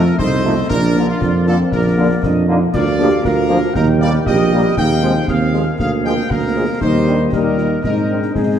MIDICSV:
0, 0, Header, 1, 8, 480
1, 0, Start_track
1, 0, Key_signature, -3, "major"
1, 0, Tempo, 509771
1, 658, Time_signature, 2, 2, 24, 8
1, 8089, End_track
2, 0, Start_track
2, 0, Title_t, "Woodwind section"
2, 0, Program_c, 0, 71
2, 0, Note_on_c, 0, 69, 74
2, 0, Note_on_c, 0, 75, 77
2, 136, Note_off_c, 0, 69, 0
2, 136, Note_off_c, 0, 75, 0
2, 166, Note_on_c, 0, 69, 74
2, 167, Note_on_c, 0, 75, 75
2, 618, Note_off_c, 0, 69, 0
2, 619, Note_off_c, 0, 75, 0
2, 649, Note_on_c, 0, 74, 86
2, 650, Note_on_c, 0, 70, 83
2, 1577, Note_off_c, 0, 70, 0
2, 1600, Note_off_c, 0, 74, 0
2, 1612, Note_on_c, 0, 74, 78
2, 1616, Note_on_c, 0, 70, 82
2, 2061, Note_off_c, 0, 74, 0
2, 2089, Note_on_c, 0, 75, 83
2, 2419, Note_off_c, 0, 70, 0
2, 2434, Note_off_c, 0, 75, 0
2, 2579, Note_on_c, 0, 70, 81
2, 2581, Note_on_c, 0, 77, 81
2, 3026, Note_off_c, 0, 70, 0
2, 3046, Note_off_c, 0, 77, 0
2, 3055, Note_on_c, 0, 70, 87
2, 3057, Note_on_c, 0, 77, 84
2, 3503, Note_off_c, 0, 70, 0
2, 3504, Note_off_c, 0, 77, 0
2, 3519, Note_on_c, 0, 79, 84
2, 3526, Note_on_c, 0, 70, 89
2, 3978, Note_off_c, 0, 70, 0
2, 4000, Note_off_c, 0, 79, 0
2, 4011, Note_on_c, 0, 70, 83
2, 4011, Note_on_c, 0, 79, 81
2, 4461, Note_off_c, 0, 70, 0
2, 4461, Note_off_c, 0, 79, 0
2, 4495, Note_on_c, 0, 68, 83
2, 4495, Note_on_c, 0, 77, 82
2, 4966, Note_off_c, 0, 68, 0
2, 4969, Note_off_c, 0, 77, 0
2, 4977, Note_on_c, 0, 68, 76
2, 4980, Note_on_c, 0, 77, 85
2, 5424, Note_off_c, 0, 68, 0
2, 5425, Note_off_c, 0, 77, 0
2, 5454, Note_on_c, 0, 68, 78
2, 5455, Note_on_c, 0, 77, 79
2, 5902, Note_off_c, 0, 68, 0
2, 5903, Note_off_c, 0, 77, 0
2, 5929, Note_on_c, 0, 68, 72
2, 5932, Note_on_c, 0, 77, 68
2, 6379, Note_off_c, 0, 68, 0
2, 6381, Note_off_c, 0, 77, 0
2, 6408, Note_on_c, 0, 75, 78
2, 6416, Note_on_c, 0, 67, 68
2, 6863, Note_off_c, 0, 67, 0
2, 6893, Note_off_c, 0, 75, 0
2, 6902, Note_on_c, 0, 75, 65
2, 6907, Note_on_c, 0, 67, 67
2, 7346, Note_off_c, 0, 75, 0
2, 7349, Note_off_c, 0, 67, 0
2, 7377, Note_on_c, 0, 72, 62
2, 7381, Note_on_c, 0, 75, 64
2, 7825, Note_off_c, 0, 75, 0
2, 7847, Note_off_c, 0, 72, 0
2, 7858, Note_on_c, 0, 72, 62
2, 7862, Note_on_c, 0, 75, 55
2, 8089, Note_off_c, 0, 72, 0
2, 8089, Note_off_c, 0, 75, 0
2, 8089, End_track
3, 0, Start_track
3, 0, Title_t, "Trumpet section"
3, 0, Program_c, 1, 61
3, 0, Note_on_c, 1, 70, 103
3, 155, Note_off_c, 1, 70, 0
3, 171, Note_on_c, 1, 72, 115
3, 621, Note_off_c, 1, 72, 0
3, 653, Note_on_c, 1, 70, 118
3, 990, Note_off_c, 1, 70, 0
3, 1021, Note_on_c, 1, 65, 98
3, 1355, Note_off_c, 1, 65, 0
3, 1388, Note_on_c, 1, 69, 114
3, 1494, Note_off_c, 1, 69, 0
3, 1624, Note_on_c, 1, 70, 99
3, 2068, Note_off_c, 1, 70, 0
3, 2578, Note_on_c, 1, 74, 120
3, 3025, Note_off_c, 1, 74, 0
3, 3062, Note_on_c, 1, 70, 121
3, 3524, Note_off_c, 1, 70, 0
3, 3535, Note_on_c, 1, 70, 104
3, 3644, Note_off_c, 1, 70, 0
3, 3782, Note_on_c, 1, 74, 118
3, 3889, Note_off_c, 1, 74, 0
3, 4018, Note_on_c, 1, 75, 112
3, 4464, Note_off_c, 1, 75, 0
3, 4497, Note_on_c, 1, 79, 127
3, 4944, Note_off_c, 1, 79, 0
3, 4977, Note_on_c, 1, 77, 106
3, 5447, Note_off_c, 1, 77, 0
3, 5458, Note_on_c, 1, 77, 103
3, 5566, Note_off_c, 1, 77, 0
3, 5697, Note_on_c, 1, 79, 109
3, 5920, Note_off_c, 1, 79, 0
3, 5939, Note_on_c, 1, 70, 108
3, 6413, Note_on_c, 1, 72, 109
3, 6418, Note_off_c, 1, 70, 0
3, 6861, Note_off_c, 1, 72, 0
3, 6900, Note_on_c, 1, 70, 95
3, 7365, Note_off_c, 1, 70, 0
3, 7376, Note_on_c, 1, 70, 92
3, 7823, Note_off_c, 1, 70, 0
3, 7859, Note_on_c, 1, 68, 74
3, 8089, Note_off_c, 1, 68, 0
3, 8089, End_track
4, 0, Start_track
4, 0, Title_t, "Euphonium"
4, 0, Program_c, 2, 58
4, 0, Note_on_c, 2, 65, 91
4, 142, Note_off_c, 2, 65, 0
4, 176, Note_on_c, 2, 63, 87
4, 400, Note_off_c, 2, 63, 0
4, 425, Note_on_c, 2, 65, 90
4, 532, Note_off_c, 2, 65, 0
4, 659, Note_on_c, 2, 62, 90
4, 1105, Note_off_c, 2, 62, 0
4, 1141, Note_on_c, 2, 62, 83
4, 1248, Note_off_c, 2, 62, 0
4, 1397, Note_on_c, 2, 60, 82
4, 1634, Note_on_c, 2, 58, 89
4, 1648, Note_off_c, 2, 60, 0
4, 1938, Note_off_c, 2, 58, 0
4, 2117, Note_on_c, 2, 62, 94
4, 2332, Note_off_c, 2, 62, 0
4, 2345, Note_on_c, 2, 63, 91
4, 2451, Note_off_c, 2, 63, 0
4, 2587, Note_on_c, 2, 65, 98
4, 2694, Note_off_c, 2, 65, 0
4, 2832, Note_on_c, 2, 67, 101
4, 2937, Note_off_c, 2, 67, 0
4, 3055, Note_on_c, 2, 65, 87
4, 3503, Note_off_c, 2, 65, 0
4, 3540, Note_on_c, 2, 63, 97
4, 3986, Note_off_c, 2, 63, 0
4, 4008, Note_on_c, 2, 67, 91
4, 4495, Note_on_c, 2, 63, 102
4, 4509, Note_off_c, 2, 67, 0
4, 4968, Note_off_c, 2, 63, 0
4, 4973, Note_on_c, 2, 60, 74
4, 5199, Note_off_c, 2, 60, 0
4, 5219, Note_on_c, 2, 58, 89
4, 6380, Note_off_c, 2, 58, 0
4, 6426, Note_on_c, 2, 63, 74
4, 6532, Note_off_c, 2, 63, 0
4, 6663, Note_on_c, 2, 62, 77
4, 6770, Note_off_c, 2, 62, 0
4, 6896, Note_on_c, 2, 63, 64
4, 7005, Note_off_c, 2, 63, 0
4, 7123, Note_on_c, 2, 65, 73
4, 7234, Note_off_c, 2, 65, 0
4, 7373, Note_on_c, 2, 63, 68
4, 7482, Note_off_c, 2, 63, 0
4, 7622, Note_on_c, 2, 62, 60
4, 7854, Note_on_c, 2, 60, 54
4, 7868, Note_off_c, 2, 62, 0
4, 8089, Note_off_c, 2, 60, 0
4, 8089, End_track
5, 0, Start_track
5, 0, Title_t, "French horn section"
5, 0, Program_c, 3, 60
5, 419, Note_on_c, 3, 53, 77
5, 421, Note_on_c, 3, 63, 78
5, 422, Note_on_c, 3, 57, 75
5, 506, Note_off_c, 3, 53, 0
5, 507, Note_off_c, 3, 63, 0
5, 508, Note_off_c, 3, 57, 0
5, 897, Note_on_c, 3, 58, 76
5, 900, Note_on_c, 3, 62, 70
5, 902, Note_on_c, 3, 53, 74
5, 984, Note_off_c, 3, 58, 0
5, 986, Note_off_c, 3, 62, 0
5, 988, Note_off_c, 3, 53, 0
5, 1375, Note_on_c, 3, 62, 72
5, 1376, Note_on_c, 3, 53, 82
5, 1379, Note_on_c, 3, 58, 75
5, 1462, Note_off_c, 3, 62, 0
5, 1463, Note_off_c, 3, 53, 0
5, 1465, Note_off_c, 3, 58, 0
5, 1868, Note_on_c, 3, 58, 84
5, 1868, Note_on_c, 3, 62, 83
5, 1869, Note_on_c, 3, 53, 72
5, 1952, Note_off_c, 3, 58, 0
5, 1952, Note_off_c, 3, 62, 0
5, 1953, Note_off_c, 3, 53, 0
5, 2347, Note_on_c, 3, 62, 81
5, 2348, Note_on_c, 3, 53, 83
5, 2349, Note_on_c, 3, 58, 81
5, 2432, Note_off_c, 3, 62, 0
5, 2433, Note_off_c, 3, 53, 0
5, 2433, Note_off_c, 3, 58, 0
5, 2814, Note_on_c, 3, 53, 77
5, 2814, Note_on_c, 3, 58, 74
5, 2818, Note_on_c, 3, 62, 79
5, 2901, Note_off_c, 3, 53, 0
5, 2902, Note_off_c, 3, 58, 0
5, 2904, Note_off_c, 3, 62, 0
5, 3291, Note_on_c, 3, 62, 74
5, 3292, Note_on_c, 3, 58, 80
5, 3293, Note_on_c, 3, 53, 80
5, 3379, Note_off_c, 3, 62, 0
5, 3380, Note_off_c, 3, 58, 0
5, 3381, Note_off_c, 3, 53, 0
5, 3766, Note_on_c, 3, 55, 78
5, 3766, Note_on_c, 3, 67, 81
5, 3769, Note_on_c, 3, 58, 71
5, 3855, Note_off_c, 3, 55, 0
5, 3855, Note_off_c, 3, 67, 0
5, 3858, Note_off_c, 3, 58, 0
5, 4246, Note_on_c, 3, 67, 81
5, 4250, Note_on_c, 3, 58, 84
5, 4252, Note_on_c, 3, 55, 76
5, 4335, Note_off_c, 3, 67, 0
5, 4338, Note_off_c, 3, 58, 0
5, 4340, Note_off_c, 3, 55, 0
5, 4735, Note_on_c, 3, 56, 72
5, 4737, Note_on_c, 3, 65, 74
5, 4738, Note_on_c, 3, 60, 75
5, 4822, Note_off_c, 3, 56, 0
5, 4824, Note_off_c, 3, 60, 0
5, 4824, Note_off_c, 3, 65, 0
5, 5203, Note_on_c, 3, 56, 75
5, 5203, Note_on_c, 3, 60, 71
5, 5207, Note_on_c, 3, 65, 73
5, 5293, Note_off_c, 3, 56, 0
5, 5293, Note_off_c, 3, 60, 0
5, 5296, Note_off_c, 3, 65, 0
5, 5691, Note_on_c, 3, 56, 72
5, 5691, Note_on_c, 3, 58, 75
5, 5691, Note_on_c, 3, 65, 67
5, 5779, Note_off_c, 3, 56, 0
5, 5779, Note_off_c, 3, 58, 0
5, 5779, Note_off_c, 3, 65, 0
5, 6165, Note_on_c, 3, 65, 69
5, 6168, Note_on_c, 3, 56, 72
5, 6168, Note_on_c, 3, 58, 73
5, 6254, Note_off_c, 3, 65, 0
5, 6256, Note_off_c, 3, 56, 0
5, 6257, Note_off_c, 3, 58, 0
5, 6411, Note_on_c, 3, 63, 77
5, 6412, Note_on_c, 3, 55, 75
5, 6412, Note_on_c, 3, 58, 72
5, 6860, Note_off_c, 3, 63, 0
5, 6861, Note_off_c, 3, 55, 0
5, 6861, Note_off_c, 3, 58, 0
5, 6889, Note_on_c, 3, 58, 67
5, 6892, Note_on_c, 3, 55, 74
5, 6893, Note_on_c, 3, 63, 67
5, 7339, Note_off_c, 3, 58, 0
5, 7341, Note_off_c, 3, 55, 0
5, 7341, Note_off_c, 3, 63, 0
5, 7380, Note_on_c, 3, 56, 60
5, 7383, Note_on_c, 3, 63, 67
5, 7384, Note_on_c, 3, 60, 64
5, 7825, Note_off_c, 3, 56, 0
5, 7826, Note_off_c, 3, 63, 0
5, 7847, Note_off_c, 3, 60, 0
5, 7858, Note_on_c, 3, 63, 64
5, 7859, Note_on_c, 3, 56, 60
5, 7859, Note_on_c, 3, 60, 58
5, 8089, Note_off_c, 3, 56, 0
5, 8089, Note_off_c, 3, 60, 0
5, 8089, Note_off_c, 3, 63, 0
5, 8089, End_track
6, 0, Start_track
6, 0, Title_t, "Trombone section"
6, 0, Program_c, 4, 61
6, 415, Note_on_c, 4, 51, 86
6, 421, Note_on_c, 4, 57, 86
6, 500, Note_off_c, 4, 51, 0
6, 504, Note_off_c, 4, 57, 0
6, 917, Note_on_c, 4, 50, 89
6, 924, Note_on_c, 4, 58, 90
6, 994, Note_off_c, 4, 50, 0
6, 999, Note_off_c, 4, 58, 0
6, 1389, Note_on_c, 4, 50, 94
6, 1389, Note_on_c, 4, 58, 91
6, 1469, Note_off_c, 4, 50, 0
6, 1469, Note_off_c, 4, 58, 0
6, 1853, Note_on_c, 4, 50, 90
6, 1854, Note_on_c, 4, 58, 84
6, 1939, Note_off_c, 4, 50, 0
6, 1940, Note_off_c, 4, 58, 0
6, 2323, Note_on_c, 4, 58, 99
6, 2328, Note_on_c, 4, 50, 90
6, 2412, Note_off_c, 4, 58, 0
6, 2415, Note_off_c, 4, 50, 0
6, 2812, Note_on_c, 4, 53, 94
6, 2818, Note_on_c, 4, 58, 97
6, 2898, Note_off_c, 4, 53, 0
6, 2902, Note_off_c, 4, 58, 0
6, 3286, Note_on_c, 4, 53, 86
6, 3288, Note_on_c, 4, 58, 93
6, 3374, Note_off_c, 4, 53, 0
6, 3375, Note_off_c, 4, 58, 0
6, 3770, Note_on_c, 4, 55, 90
6, 3774, Note_on_c, 4, 58, 94
6, 3857, Note_off_c, 4, 55, 0
6, 3859, Note_off_c, 4, 58, 0
6, 4264, Note_on_c, 4, 58, 92
6, 4267, Note_on_c, 4, 55, 87
6, 4346, Note_off_c, 4, 58, 0
6, 4348, Note_off_c, 4, 55, 0
6, 4728, Note_on_c, 4, 56, 84
6, 4731, Note_on_c, 4, 53, 86
6, 4816, Note_off_c, 4, 56, 0
6, 4817, Note_off_c, 4, 53, 0
6, 5209, Note_on_c, 4, 56, 83
6, 5210, Note_on_c, 4, 53, 76
6, 5296, Note_off_c, 4, 56, 0
6, 5297, Note_off_c, 4, 53, 0
6, 5685, Note_on_c, 4, 56, 81
6, 5686, Note_on_c, 4, 53, 85
6, 5773, Note_off_c, 4, 56, 0
6, 5774, Note_off_c, 4, 53, 0
6, 6170, Note_on_c, 4, 53, 75
6, 6171, Note_on_c, 4, 56, 76
6, 6257, Note_off_c, 4, 53, 0
6, 6257, Note_off_c, 4, 56, 0
6, 6657, Note_on_c, 4, 55, 78
6, 6661, Note_on_c, 4, 51, 74
6, 6741, Note_off_c, 4, 55, 0
6, 6744, Note_off_c, 4, 51, 0
6, 7139, Note_on_c, 4, 55, 67
6, 7141, Note_on_c, 4, 51, 68
6, 7222, Note_off_c, 4, 55, 0
6, 7223, Note_off_c, 4, 51, 0
6, 7624, Note_on_c, 4, 51, 64
6, 7629, Note_on_c, 4, 60, 64
6, 7705, Note_off_c, 4, 51, 0
6, 7708, Note_off_c, 4, 60, 0
6, 8089, End_track
7, 0, Start_track
7, 0, Title_t, "Tuba"
7, 0, Program_c, 5, 58
7, 0, Note_on_c, 5, 41, 97
7, 97, Note_off_c, 5, 41, 0
7, 172, Note_on_c, 5, 36, 84
7, 575, Note_off_c, 5, 36, 0
7, 657, Note_on_c, 5, 34, 97
7, 1058, Note_off_c, 5, 34, 0
7, 1134, Note_on_c, 5, 41, 94
7, 1536, Note_off_c, 5, 41, 0
7, 1620, Note_on_c, 5, 34, 101
7, 2019, Note_off_c, 5, 34, 0
7, 2100, Note_on_c, 5, 41, 88
7, 2499, Note_off_c, 5, 41, 0
7, 2586, Note_on_c, 5, 38, 99
7, 2982, Note_off_c, 5, 38, 0
7, 3063, Note_on_c, 5, 38, 100
7, 3460, Note_off_c, 5, 38, 0
7, 3543, Note_on_c, 5, 39, 106
7, 3940, Note_off_c, 5, 39, 0
7, 4017, Note_on_c, 5, 34, 97
7, 4418, Note_off_c, 5, 34, 0
7, 4496, Note_on_c, 5, 39, 86
7, 4897, Note_off_c, 5, 39, 0
7, 4976, Note_on_c, 5, 39, 89
7, 5377, Note_off_c, 5, 39, 0
7, 5456, Note_on_c, 5, 38, 88
7, 5857, Note_off_c, 5, 38, 0
7, 5930, Note_on_c, 5, 38, 86
7, 6295, Note_off_c, 5, 38, 0
7, 6416, Note_on_c, 5, 39, 83
7, 6840, Note_off_c, 5, 39, 0
7, 6897, Note_on_c, 5, 39, 69
7, 7320, Note_off_c, 5, 39, 0
7, 7380, Note_on_c, 5, 44, 73
7, 7802, Note_off_c, 5, 44, 0
7, 7859, Note_on_c, 5, 44, 69
7, 8089, Note_off_c, 5, 44, 0
7, 8089, End_track
8, 0, Start_track
8, 0, Title_t, "Drums"
8, 59, Note_on_c, 9, 38, 51
8, 153, Note_off_c, 9, 38, 0
8, 179, Note_on_c, 9, 35, 84
8, 179, Note_on_c, 9, 38, 72
8, 273, Note_off_c, 9, 35, 0
8, 273, Note_off_c, 9, 38, 0
8, 660, Note_on_c, 9, 35, 79
8, 660, Note_on_c, 9, 38, 71
8, 755, Note_off_c, 9, 35, 0
8, 755, Note_off_c, 9, 38, 0
8, 782, Note_on_c, 9, 38, 57
8, 876, Note_off_c, 9, 38, 0
8, 903, Note_on_c, 9, 38, 54
8, 998, Note_off_c, 9, 38, 0
8, 1140, Note_on_c, 9, 35, 82
8, 1140, Note_on_c, 9, 38, 76
8, 1235, Note_off_c, 9, 35, 0
8, 1235, Note_off_c, 9, 38, 0
8, 1379, Note_on_c, 9, 38, 57
8, 1473, Note_off_c, 9, 38, 0
8, 1617, Note_on_c, 9, 35, 70
8, 1617, Note_on_c, 9, 38, 60
8, 1711, Note_off_c, 9, 35, 0
8, 1711, Note_off_c, 9, 38, 0
8, 2099, Note_on_c, 9, 35, 88
8, 2099, Note_on_c, 9, 38, 86
8, 2194, Note_off_c, 9, 35, 0
8, 2194, Note_off_c, 9, 38, 0
8, 2578, Note_on_c, 9, 35, 75
8, 2578, Note_on_c, 9, 38, 69
8, 2578, Note_on_c, 9, 49, 48
8, 2672, Note_off_c, 9, 35, 0
8, 2672, Note_off_c, 9, 38, 0
8, 2672, Note_off_c, 9, 49, 0
8, 2696, Note_on_c, 9, 38, 56
8, 2790, Note_off_c, 9, 38, 0
8, 2819, Note_on_c, 9, 38, 54
8, 2913, Note_off_c, 9, 38, 0
8, 3057, Note_on_c, 9, 35, 78
8, 3057, Note_on_c, 9, 38, 79
8, 3151, Note_off_c, 9, 35, 0
8, 3151, Note_off_c, 9, 38, 0
8, 3292, Note_on_c, 9, 38, 60
8, 3386, Note_off_c, 9, 38, 0
8, 3532, Note_on_c, 9, 35, 85
8, 3532, Note_on_c, 9, 38, 76
8, 3626, Note_off_c, 9, 35, 0
8, 3626, Note_off_c, 9, 38, 0
8, 3893, Note_on_c, 9, 38, 55
8, 3987, Note_off_c, 9, 38, 0
8, 4013, Note_on_c, 9, 35, 81
8, 4013, Note_on_c, 9, 38, 66
8, 4108, Note_off_c, 9, 35, 0
8, 4108, Note_off_c, 9, 38, 0
8, 4491, Note_on_c, 9, 35, 77
8, 4491, Note_on_c, 9, 38, 66
8, 4585, Note_off_c, 9, 35, 0
8, 4585, Note_off_c, 9, 38, 0
8, 4611, Note_on_c, 9, 38, 58
8, 4705, Note_off_c, 9, 38, 0
8, 4730, Note_on_c, 9, 38, 48
8, 4824, Note_off_c, 9, 38, 0
8, 4970, Note_on_c, 9, 35, 77
8, 4970, Note_on_c, 9, 38, 81
8, 5064, Note_off_c, 9, 35, 0
8, 5064, Note_off_c, 9, 38, 0
8, 5214, Note_on_c, 9, 38, 60
8, 5309, Note_off_c, 9, 38, 0
8, 5455, Note_on_c, 9, 35, 78
8, 5455, Note_on_c, 9, 38, 70
8, 5549, Note_off_c, 9, 35, 0
8, 5549, Note_off_c, 9, 38, 0
8, 5814, Note_on_c, 9, 38, 54
8, 5908, Note_off_c, 9, 38, 0
8, 5935, Note_on_c, 9, 35, 83
8, 5935, Note_on_c, 9, 38, 69
8, 6029, Note_off_c, 9, 35, 0
8, 6029, Note_off_c, 9, 38, 0
8, 6414, Note_on_c, 9, 35, 74
8, 6414, Note_on_c, 9, 38, 65
8, 6414, Note_on_c, 9, 49, 27
8, 6508, Note_off_c, 9, 35, 0
8, 6508, Note_off_c, 9, 38, 0
8, 6508, Note_off_c, 9, 49, 0
8, 6535, Note_on_c, 9, 38, 56
8, 6629, Note_off_c, 9, 38, 0
8, 6656, Note_on_c, 9, 38, 50
8, 6750, Note_off_c, 9, 38, 0
8, 6896, Note_on_c, 9, 35, 74
8, 6896, Note_on_c, 9, 38, 73
8, 6990, Note_off_c, 9, 35, 0
8, 6990, Note_off_c, 9, 38, 0
8, 7136, Note_on_c, 9, 38, 54
8, 7230, Note_off_c, 9, 38, 0
8, 7381, Note_on_c, 9, 35, 76
8, 7381, Note_on_c, 9, 38, 61
8, 7476, Note_off_c, 9, 35, 0
8, 7476, Note_off_c, 9, 38, 0
8, 7743, Note_on_c, 9, 38, 48
8, 7837, Note_off_c, 9, 38, 0
8, 7864, Note_on_c, 9, 35, 78
8, 7864, Note_on_c, 9, 38, 61
8, 7958, Note_off_c, 9, 35, 0
8, 7958, Note_off_c, 9, 38, 0
8, 8089, End_track
0, 0, End_of_file